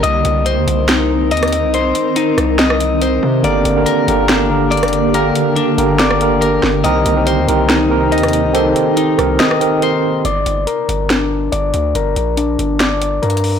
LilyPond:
<<
  \new Staff \with { instrumentName = "Clean electric guitar" } { \time 4/4 \key g \minor \tempo 4 = 141 ees''4 c''4 ees'4 ees''4 | c''4 ees'4 ees''4 c''4 | d''4 bes'4 d'4 d''4 | bes'4 d'4 d''4 bes'4 |
ees''4 c''4 ees'4 ees''4 | c''4 ees'4 ees''4 c''4 | d''4 bes'4 d'4 d''4 | bes'4 d'4 d''4 bes'4 | }
  \new Staff \with { instrumentName = "Tine electric piano" } { \time 4/4 \key g \minor r1 | r1 | <d bes g' bes'>8. <d bes g' bes'>8. <d bes g' bes'>8. r16 <d bes g' bes'>4~ <d bes g' bes'>16 r16 | <d bes g' bes'>4~ <d bes g' bes'>16 r16 <d bes g' bes'>8. r16 <d bes g' bes'>4~ <d bes g' bes'>16 r16 |
<ees c' g' bes'>8. <ees c' g' bes'>8. <ees c' g' bes'>8. r16 <ees c' g' bes'>4~ <ees c' g' bes'>16 r16 | <ees c' g' a'>4~ <ees c' g' a'>16 r16 <ees c' g' bes'>8. r16 <ees c' g' bes'>4~ <ees c' g' bes'>16 r16 | r1 | r1 | }
  \new Staff \with { instrumentName = "Ambient pad" } { \time 4/4 \key g \minor << { <ees bes'>1~ | <ees bes'>1 | <d g'>1~ | <d g'>1 |
<c ees'>1~ | <c ees'>1 | r1 | r1 | } \\ { c'1~ | c'1 | bes1~ | bes1~ |
bes1~ | bes1 | r1 | r1 | } >> }
  \new Staff \with { instrumentName = "808-style bass" } { \clef bass \time 4/4 \key g \minor c,8 c,8. ees,16 c,4. ees,8. c,16~ | c,8 r4 c,2 c8 | g,,8 g,,8 r8 g,,2~ g,,8~ | g,,8 r4 g,,2 g,,8 |
c,8 c,8. ees,16 c,4. ees,8. c,16~ | c,8 r4 c,8 r2 | g,,8 g,,8 r8 g,,4. g,,8 d,8 | g,,8 bes,,4 g,,4. g,4 | }
  \new DrumStaff \with { instrumentName = "Drums" } \drummode { \time 4/4 hh8 hh8 hh8 hh8 <hh sn>4 hh32 hh32 <hh ss>32 hh32 hh8 | hh8 hh8 hh8 <hh ss>8 <hh sn>16 ss16 hh8 hh4 | hh8 hh8 hh8 hh8 <hh sn>4 hh32 hh32 <hh ss>32 hh32 hh8 | hh8 hh8 hh8 hh8 <hh sn>16 ss16 hh8 hh8 sn8 |
hh8 hh8 hh8 hh8 <hh sn>4 hh32 hh32 <hh ss>32 hh32 hh8 | hh8 hh8 hh8 <hh ss>8 <hh sn>16 ss16 hh8 hh4 | hh8 hh8 hh8 hh8 <hh sn>4 hh8 hh8 | hh8 hh8 hh8 hh8 <hh sn>8 hh8 \tuplet 3/2 { hh16 hh16 hh16 hho16 r16 r16 } | }
>>